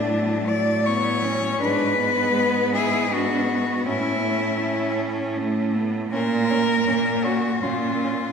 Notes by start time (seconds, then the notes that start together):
Already playing: A2 A3 D4
0.09 F#3 A3
0.48 F#3 D5
0.86 B3 C#5
1.24 C#4
1.61 G#2 G#3 D4 B4
1.99 B3
2.38 B3
2.75 E4 G#4
3.11 B3 D4 F#4
3.49 B3
3.86 A2 C#4 E4
4.24 A3
4.62 C#4
5.37 A3 C#4
5.74 B3
6.10 A#2 A#3 C#4 A#4
6.50 C#4
6.87 A#2 C#4
7.24 C#4 F#4
7.62 A#2 C#4 F4
8.04 C#4